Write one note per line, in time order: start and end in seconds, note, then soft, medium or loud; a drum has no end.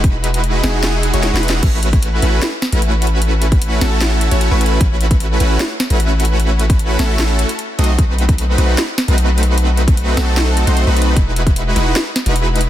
0.00 0.62 E1 loud
0.00 0.61 G#3 medium
0.00 0.61 D#4 medium
0.00 0.61 E4 medium
0.00 0.61 F#4 medium
0.00 0.61 B4 medium
0.00 kick loud
0.00 closed hi-hat medium
0.24 closed hi-hat medium
0.34 closed hi-hat medium
0.44 closed hi-hat medium
0.64 1.11 E1 loud
0.64 1.11 G#3 medium
0.64 1.11 D#4 medium
0.64 1.11 E4 medium
0.64 1.11 F#4 medium
0.64 1.11 G#4 medium
0.64 snare medium
0.64 closed hi-hat medium
0.83 snare loud
0.83 closed hi-hat medium
1.03 closed hi-hat medium
1.14 1.31 E1 medium
1.14 1.31 G#3 medium
1.14 1.31 D#4 medium
1.14 1.31 E4 medium
1.14 1.31 F#4 medium
1.14 1.31 C#5 medium
1.14 closed hi-hat medium
1.23 snare medium
1.23 closed hi-hat medium
1.33 1.61 E1 loud
1.33 1.61 G#3 medium
1.33 1.61 D#4 medium
1.33 1.61 E4 medium
1.33 1.61 F#4 medium
1.33 1.61 B4 medium
1.33 snare medium
1.43 closed hi-hat medium
1.48 snare loud
1.48 closed hi-hat medium
1.63 2.21 A1 loud
1.63 kick loud
1.63 closed hi-hat medium
1.63 crash loud
1.83 closed hi-hat medium
1.93 kick loud
1.93 closed hi-hat medium
2.03 closed hi-hat medium
2.22 2.40 A1 loud
2.22 2.42 A3 medium
2.22 2.42 C#4 medium
2.22 2.42 E4 medium
2.22 2.42 F#4 medium
2.22 2.42 B4 medium
2.22 closed hi-hat medium
2.42 snare loud
2.42 closed hi-hat medium
2.62 snare medium
2.62 closed hi-hat medium
2.72 3.79 A1 loud
2.72 3.79 A3 medium
2.72 3.79 C#4 medium
2.72 3.79 E4 medium
2.72 3.79 F#4 medium
2.72 3.79 B4 loud
2.72 closed hi-hat medium
2.82 closed hi-hat medium
3.02 closed hi-hat medium
3.07 closed hi-hat medium
3.22 closed hi-hat medium
3.42 closed hi-hat medium
3.52 kick loud
3.52 closed hi-hat medium
3.62 closed hi-hat medium
3.81 4.29 A1 loud
3.81 4.29 A3 medium
3.81 4.29 C#4 medium
3.81 4.29 E4 medium
3.81 4.29 F#4 medium
3.81 4.29 A4 medium
3.81 snare medium
3.81 closed hi-hat medium
4.01 snare loud
4.01 closed hi-hat medium
4.21 closed hi-hat medium
4.31 4.49 A1 medium
4.31 4.49 A3 medium
4.31 4.49 C#4 medium
4.31 4.49 E4 medium
4.31 4.49 F#4 medium
4.31 4.49 C#5 medium
4.31 closed hi-hat medium
4.41 closed hi-hat medium
4.51 4.79 A1 loud
4.51 4.78 A3 medium
4.51 4.78 C#4 medium
4.51 4.78 E4 medium
4.51 4.78 F#4 medium
4.51 4.78 B4 medium
4.61 closed hi-hat medium
4.66 closed hi-hat medium
4.81 5.38 A1 loud
4.81 5.38 A3 medium
4.81 5.38 C#4 medium
4.81 5.38 E4 medium
4.81 5.38 F#4 medium
4.81 5.38 B4 medium
4.81 kick loud
4.81 closed hi-hat medium
5.01 closed hi-hat medium
5.11 kick loud
5.11 closed hi-hat medium
5.20 closed hi-hat medium
5.40 5.58 A1 loud
5.40 5.60 A3 medium
5.40 5.60 C#4 medium
5.40 5.60 E4 medium
5.40 5.60 F#4 medium
5.40 5.60 B4 medium
5.40 closed hi-hat medium
5.60 snare loud
5.60 closed hi-hat medium
5.80 snare medium
5.80 closed hi-hat medium
5.90 6.97 A1 loud
5.90 6.97 A3 medium
5.90 6.97 C#4 medium
5.90 6.97 E4 medium
5.90 6.97 F#4 medium
5.90 6.97 B4 medium
5.90 closed hi-hat medium
6.00 closed hi-hat medium
6.20 closed hi-hat medium
6.25 closed hi-hat medium
6.40 closed hi-hat medium
6.59 closed hi-hat medium
6.70 kick loud
6.70 closed hi-hat medium
6.79 closed hi-hat medium
6.99 7.45 A1 loud
6.99 7.47 A3 medium
6.99 7.47 C#4 medium
6.99 7.47 E4 medium
6.99 7.47 F#4 medium
6.99 7.47 A4 loud
6.99 snare medium
6.99 closed hi-hat medium
7.19 snare loud
7.19 closed hi-hat medium
7.39 closed hi-hat medium
7.49 closed hi-hat medium
7.59 closed hi-hat medium
7.79 7.97 B1 loud
7.79 7.91 A3 medium
7.79 7.91 C4 medium
7.79 7.91 D#4 medium
7.79 7.91 F#4 medium
7.79 7.91 D#5 medium
7.79 closed hi-hat soft
7.84 closed hi-hat medium
7.99 8.56 A3 medium
7.99 8.56 C4 medium
7.99 8.56 D#4 medium
7.99 8.56 F#4 medium
7.99 8.56 B4 medium
7.99 kick loud
7.99 closed hi-hat medium
8.19 closed hi-hat medium
8.29 kick loud
8.29 closed hi-hat medium
8.38 closed hi-hat medium
8.58 8.76 B1 loud
8.58 8.78 A3 medium
8.58 8.78 C4 medium
8.58 8.78 D#4 medium
8.58 8.78 F#4 medium
8.58 8.78 B4 medium
8.58 closed hi-hat medium
8.78 snare loud
8.78 closed hi-hat medium
8.98 snare medium
8.98 closed hi-hat medium
9.08 10.15 B1 medium
9.08 10.15 A3 medium
9.08 10.15 C4 medium
9.08 10.15 D#4 medium
9.08 10.15 F#4 medium
9.08 10.15 B4 medium
9.08 closed hi-hat medium
9.18 closed hi-hat medium
9.38 closed hi-hat soft
9.43 closed hi-hat medium
9.58 closed hi-hat medium
9.77 closed hi-hat medium
9.88 kick loud
9.88 closed hi-hat medium
9.97 closed hi-hat medium
10.17 10.65 B1 loud
10.17 10.65 A3 medium
10.17 10.65 C4 medium
10.17 10.65 D#4 medium
10.17 10.65 F#4 medium
10.17 10.65 A4 loud
10.17 snare medium
10.17 closed hi-hat medium
10.37 snare loud
10.37 closed hi-hat medium
10.57 closed hi-hat medium
10.67 10.85 B1 medium
10.67 10.85 A3 medium
10.67 10.85 C4 medium
10.67 10.85 D#4 medium
10.67 10.85 F#4 medium
10.67 10.85 C5 medium
10.67 closed hi-hat medium
10.77 closed hi-hat medium
10.87 11.15 B1 loud
10.87 11.14 A3 medium
10.87 11.14 C4 medium
10.87 11.14 D#4 medium
10.87 11.14 F#4 medium
10.87 11.14 B4 medium
10.97 closed hi-hat soft
11.02 closed hi-hat medium
11.16 11.74 G#3 medium
11.16 11.74 D#4 medium
11.16 11.74 E4 medium
11.16 11.74 F#4 medium
11.16 11.74 B4 loud
11.16 kick loud
11.16 closed hi-hat medium
11.36 closed hi-hat medium
11.47 kick loud
11.47 closed hi-hat medium
11.56 closed hi-hat medium
11.76 11.94 E1 loud
11.76 11.96 G#3 medium
11.76 11.96 D#4 medium
11.76 11.96 E4 medium
11.76 11.96 F#4 medium
11.76 11.96 B4 medium
11.76 closed hi-hat medium
11.96 snare loud
11.96 closed hi-hat medium
12.16 snare medium
12.16 closed hi-hat medium
12.26 12.69 E1 loud
12.26 12.69 G#3 medium
12.26 12.69 D#4 medium
12.26 12.69 E4 medium
12.26 12.69 F#4 medium
12.26 12.69 B4 loud
12.26 closed hi-hat medium
12.36 closed hi-hat medium
12.56 closed hi-hat soft
12.61 closed hi-hat medium